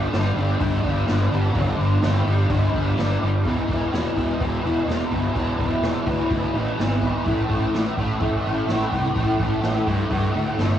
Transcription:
Already playing: G2 D3 G3 D4
0.13 G1 G2 D3 G3, snare, open hi-hat
0.36 G1 D3 G3
0.60 G1 G2 D3 G3, kick, open hi-hat
0.83 G1 D3 G3, kick
1.07 G1, snare, open hi-hat
1.32 G1 D3 G3
1.55 G1 G2 D3 G3, kick, open hi-hat
1.79 G1
2.02 G1 G2 D3 G3, snare, open hi-hat
2.26 G1 D3 G3
2.50 G1 G2 D3 G3, kick, open hi-hat
2.74 G1 D3 G3, kick
2.97 G1, snare, open hi-hat
3.22 G1 D3 G3
3.44 E1 E2 B2 E3, kick, open hi-hat
3.69 E1 B2 E3, kick, open hi-hat
3.92 E1 E2 B2 E3, snare, open hi-hat
4.16 E1 E2 B2 E3, kick, open hi-hat
4.40 E1 E2 B2 E3, kick, open hi-hat
4.63 E1 E2 B2 E3, open hi-hat
4.87 E1 E2 B2 E3, snare, open hi-hat
5.01 snare
5.12 G1 B2 E3, kick, open hi-hat
5.35 E1 E2 B2 E3, kick, open hi-hat
5.59 E1 B2 E3, kick, open hi-hat
5.82 E1 E2 B2 E3, snare, open hi-hat
6.06 D2 E2 B2 E3, kick, open hi-hat
6.31 D2 E2 B2 E3, kick, open hi-hat
6.54 A1 E2 B2 E3, open hi-hat
6.79 G#1 E2 B2 E3, snare, open hi-hat
7.02 B2 E3, kick, open hi-hat
7.26 A1 A2 E3 A3, kick, open hi-hat
7.49 A1 E3 A3, kick, open hi-hat
7.74 A1 A2 E3 A3, snare, open hi-hat
7.97 A1 A2 E3 A3, kick, open hi-hat
8.20 A1 A2 E3 A3, kick, open hi-hat
8.44 A1 A2 E3 A3, open hi-hat
8.68 A1 A2 E3, snare, open hi-hat
8.72 A3
8.92 C2 E3 A3, kick, open hi-hat
9.15 A1 A2 E3 A3, kick, open hi-hat
9.39 A1 E3 A3, kick, open hi-hat
9.63 A1 A2 E3 A3, snare, open hi-hat
9.86 G2 A2 E3 A3, kick, open hi-hat
10.10 G2 A2 E3 A3, kick, open hi-hat
10.32 D2 A2 E3 A3, open hi-hat
10.57 G1 A2 E3 A3, snare, open hi-hat

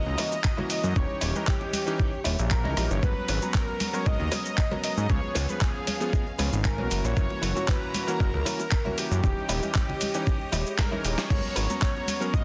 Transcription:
Already playing: E4 F#4 D#5 A#5
0.06 C#2, low conga, cabasa
0.18 E3 A#3 C#4 E4 F#4 A#4 C#5, open hi-hat, high conga, cabasa
0.32 high bongo, cabasa
0.44 kick, clap, cabasa
0.57 E3 A#3 C#4 E4 F#4 A#4 C#5, high bongo, high conga, low conga, cabasa
0.70 D#5, open hi-hat, cabasa
0.83 F#2, cabasa
0.96 D#1 E3 C#4 D#4 G4 C#5, kick, high bongo, high conga, cabasa
1.09 cabasa
1.21 D#1 E4 G4 C#5 D#5, open hi-hat, high bongo, cabasa
1.35 E3 C#4 G4 A#4 D#5, high conga, cabasa
1.47 G4, kick, clap, cabasa
1.61 high bongo, cabasa
1.73 open hi-hat, high conga, cabasa
1.86 E3 C#4 D#4 G4, muted clean electric guitar stroke, high bongo, cabasa
1.99 muted clean electric guitar stroke, kick, cabasa
2.13 cabasa
2.24 D#1 E4 G4 C#5 E5, open hi-hat, high bongo, high conga, cabasa
2.39 A#1, cabasa
2.51 A#4, kick, clap, high bongo, cabasa
2.64 C#2 E3 C#4 D#4 E4 G4 C#5 D#5, high conga, cabasa
2.76 A#1 E3 C#4 D#4 G4, cross-stick, open hi-hat, cabasa
2.90 G1 C#5, high bongo, cabasa
3.02 G#1 F#3 G#3 B3 C#4 F#4 B4 C#5 A#5, kick, high bongo, high conga, cabasa
3.16 cabasa
3.28 G#1 F#4 A#4 B4 C#5, open hi-hat, cabasa
3.42 F#3 B3 C#4 A#5, high bongo, high conga, cabasa
3.54 A#4, muted clean electric guitar stroke, kick, clap, cabasa
3.68 high bongo, cabasa
3.80 open hi-hat, high conga, cabasa
3.93 F#3 B3 C#4 A#4 C#5, muted clean electric guitar stroke, cabasa
4.06 G#1 D#5, kick, high bongo, cabasa
4.20 D#2, low conga, cabasa
4.32 F#3 B3 C#4 F#4 A#4 B4 C#5, open hi-hat, high bongo, high conga, cabasa
4.46 cabasa
4.58 kick, clap, cabasa
4.71 F#3 B3 C#4 F#4 A#4 B4 C#5 A#5, high bongo, high conga, low conga, cabasa
4.84 D#5, open hi-hat, cabasa
4.97 G#2, high bongo, cabasa
5.09 C#2 F3 B3 C#4 G#4 C#5 F5, kick, high conga, cabasa
5.23 cabasa
5.35 C#2 F4 G#4 B4 C#5, open hi-hat, high bongo, cabasa
5.49 F3 B3 C#4 G#4 B4, high conga, cabasa
5.61 G#4, kick, clap, high bongo, cabasa
5.75 cabasa
5.87 C#5, open hi-hat, high conga, cabasa
6.00 F3 B3 C#4 G#4, muted clean electric guitar stroke, high bongo, cabasa
6.13 D#5, muted clean electric guitar stroke, kick, cabasa
6.27 high bongo, cabasa
6.38 C#2 F3 B3 C#4 F4 G#4 B4 C#5 F5, open hi-hat, high conga, cabasa
6.52 G#1, cabasa
6.65 A#4 G#5, kick, clap, high bongo, cabasa
6.78 B1 E3 A#3 C#4 F4 F#4 G#4 B4 C#5, high conga, cabasa
6.90 F#1 E4 F#4 A#4 C#5 F#5 A#5, open hi-hat, high bongo, cabasa
7.04 A#1 C#5, cabasa
7.16 F#1 E3 A#3 C#4 F#4, kick, high conga, cabasa
7.30 high bongo, cabasa
7.42 F#1 E4 F#4 A#4 C#5, open hi-hat, cabasa
7.55 A#2 E3 C#4 F#4, high bongo, high conga, cabasa
7.68 B4, kick, clap, cabasa
7.83 cabasa
7.94 open hi-hat, high bongo, high conga, cabasa
8.07 E3 A#3 C#4 F#4 A#4, muted clean electric guitar stroke, cabasa
8.20 F#1, muted clean electric guitar stroke, kick, high bongo, cabasa
8.34 C#2, low conga, cabasa
8.45 E3 A#3 C#4 E4 F#4 A#4 C#5, open hi-hat, high conga, cabasa
8.59 high bongo, cabasa
8.71 kick, clap, cabasa
8.85 E3 A#3 C#4 E4 F#4 A#4 C#5, high bongo, high conga, low conga, cabasa
8.98 G4, open hi-hat, cabasa
9.11 F#2, cabasa
9.23 D#1 E3 C#4 D#4 G4 C#5 D#5, kick, high bongo, high conga, cabasa
9.38 cabasa
9.49 D#1 E4 G4 C#5 D#5, open hi-hat, high bongo, cabasa
9.62 E3 C#4 G4 D#5, high conga, cabasa
9.74 kick, clap, cabasa
9.89 high bongo, low conga, cabasa
10.01 open hi-hat, high conga, cabasa
10.14 E3 C#4 D#4 G4, muted clean electric guitar stroke, high bongo, cabasa
10.27 muted clean electric guitar stroke, kick, swell, cabasa
10.41 cabasa
10.52 D#1 E4 G4 C#5 D#5, open hi-hat, high bongo, high conga, cabasa
10.66 cabasa
10.78 A#4, kick, snare, clap, high bongo, cabasa
10.91 E3 C#4 D#4 E4 G4 C#5 D#5, high conga, cabasa
11.04 D#1 E3 C#4 D#4 G4, open hi-hat, cabasa
11.06 cabasa
11.18 C#5, snare, high bongo, cabasa
11.30 G#1 F#3 G#3 B3 C#4 F#4 A#4 A#5, kick, crash, high bongo, high conga, cabasa
11.46 cabasa
11.56 G#1 F#4 A#4 B4 C#5, open hi-hat, cabasa
11.69 F#3 B3 C#4 A#5, high bongo, high conga, cabasa
11.81 C#5, muted clean electric guitar stroke, kick, clap, cabasa
11.84 cabasa
11.96 high bongo, cabasa
12.07 open hi-hat, high conga, cabasa
12.21 F#3 B3 C#4 A#4, muted clean electric guitar stroke, cabasa
12.34 G#1 D#5, muted clean electric guitar stroke, kick, high bongo, cabasa

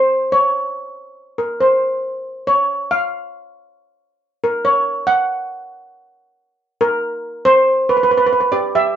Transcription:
Already playing: C5
0.32 C#5
1.38 A#4
1.61 C5
2.47 C#5
2.91 F5
4.44 A#4
4.65 C#5
5.07 F#5
6.81 A#4
7.45 C5
7.89 B4
7.97 B4
8.03 B4
8.11 B4
8.18 B4
8.27 B4
8.33 B4
8.41 B4
8.52 G4 D5
8.75 G4 E5

